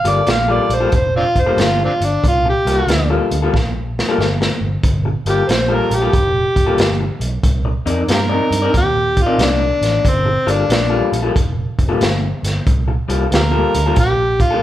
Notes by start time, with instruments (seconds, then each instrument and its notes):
Already playing: harmonica F5
0.04 fingered electric bass G1, clean electric guitar G3 A#3 F4 A4, closed hi-hat
0.09 harmonica D5
0.26 fingered electric bass A#1, muted clean electric guitar stroke, snare, closed hi-hat
0.30 harmonica F5
0.48 clean electric guitar G3 A#3 F4 A4, harmonica D5
0.69 fingered electric bass A#1, closed hi-hat
0.74 harmonica C5
0.80 clean electric guitar G3 A#3 F4 A4
0.92 fingered electric bass F1, harmonica C5, muted clean electric guitar stroke, kick, closed hi-hat
1.16 harmonica C4 D4 F4
1.35 fingered electric bass F1, kick, closed hi-hat
1.40 harmonica C5
1.46 clean electric guitar G3 A#3 F4 A4
1.57 fingered electric bass G1, snare, closed hi-hat
1.63 harmonica F4
1.79 muted clean electric guitar stroke
1.85 harmonica C4 D4 F4
2.00 fingered electric bass G1, closed hi-hat
2.05 harmonica D4
2.23 fingered electric bass C2, kick, closed hi-hat
2.28 harmonica F4
2.46 muted clean electric guitar stroke
2.50 harmonica G4
2.65 fingered electric bass C2, clean electric guitar G3 A#3 F4 A4, closed hi-hat
2.87 fingered electric bass D2, muted clean electric guitar stroke, snare, closed hi-hat
3.10 clean electric guitar G3 A#3 F4 A4
3.31 fingered electric bass D2, closed hi-hat
3.42 clean electric guitar G3 A#3 F4 A4
3.53 fingered electric bass A#1, muted clean electric guitar stroke, kick, snare
3.99 snare
4.09 clean electric guitar G3 A#3 F4 A4
4.18 fingered electric bass G1, snare
4.41 muted clean electric guitar stroke, snare
4.61 fingered electric bass G1
4.83 fingered electric bass G1, kick, closed hi-hat
5.05 muted clean electric guitar stroke
5.26 fingered electric bass G1, clean electric guitar G3 A#3 F4 A4, harmonica G4, closed hi-hat
5.48 fingered electric bass A#1, harmonica C5, muted clean electric guitar stroke, snare, closed hi-hat
5.68 clean electric guitar G3 A#3 F4 A4
5.74 harmonica A#4
5.91 fingered electric bass A#1, harmonica G4, closed hi-hat
6.02 clean electric guitar G3 A#3 F4 A4
6.12 fingered electric bass F1, muted clean electric guitar stroke, kick, closed hi-hat
6.56 fingered electric bass F1, kick, closed hi-hat
6.66 clean electric guitar G3 A#3 F4 A4
6.78 fingered electric bass G1, snare, closed hi-hat
7.01 muted clean electric guitar stroke
7.20 fingered electric bass B1, closed hi-hat
7.43 fingered electric bass C2, kick, closed hi-hat
7.65 muted clean electric guitar stroke
7.86 fingered electric bass F2, clean electric guitar C4 D#4 A#4 D5, closed hi-hat
8.08 fingered electric bass G2, harmonica F4 G4 A#4, muted clean electric guitar stroke, snare, closed hi-hat
8.29 clean electric guitar C4 D#4 A#4 D5
8.51 fingered electric bass G2, closed hi-hat
8.62 clean electric guitar C4 D#4 A#4 D5
8.73 fingered electric bass D#2, muted clean electric guitar stroke, kick, closed hi-hat
8.77 harmonica G4
9.17 kick, closed hi-hat
9.22 harmonica F4
9.26 clean electric guitar C4 D#4 A#4 D5
9.38 fingered electric bass C2, snare, closed hi-hat
9.43 harmonica D4
9.60 muted clean electric guitar stroke
9.81 fingered electric bass A1, snare, closed hi-hat
10.05 fingered electric bass G1, harmonica C4, kick, closed hi-hat
10.25 muted clean electric guitar stroke
10.47 fingered electric bass G1, clean electric guitar G3 A#3 F4 A4, harmonica D4, closed hi-hat
10.68 fingered electric bass A#1, muted clean electric guitar stroke, snare, closed hi-hat
10.90 clean electric guitar G3 A#3 F4 A4
11.12 fingered electric bass A#1, closed hi-hat
11.22 clean electric guitar G3 A#3 F4 A4
11.35 fingered electric bass F1, muted clean electric guitar stroke, kick, closed hi-hat
11.79 fingered electric bass F1, kick, closed hi-hat
11.89 clean electric guitar G3 A#3 F4 A4
12.01 fingered electric bass G1, snare, closed hi-hat
12.20 muted clean electric guitar stroke
12.43 fingered electric bass G1, snare, closed hi-hat
12.67 fingered electric bass C2, kick, closed hi-hat
12.88 muted clean electric guitar stroke
13.08 fingered electric bass C2, clean electric guitar G3 A#3 F4 A4, closed hi-hat
13.31 fingered electric bass D2, harmonica F4 G4 A#4, muted clean electric guitar stroke, snare, closed hi-hat
13.51 clean electric guitar G3 A#3 F4 A4
13.74 fingered electric bass D2, closed hi-hat
13.86 clean electric guitar G3 A#3 F4 A4
13.96 fingered electric bass A#1, harmonica G4, muted clean electric guitar stroke, kick, closed hi-hat
14.40 harmonica F4, kick, closed hi-hat
14.51 clean electric guitar G3 A#3 F4 A4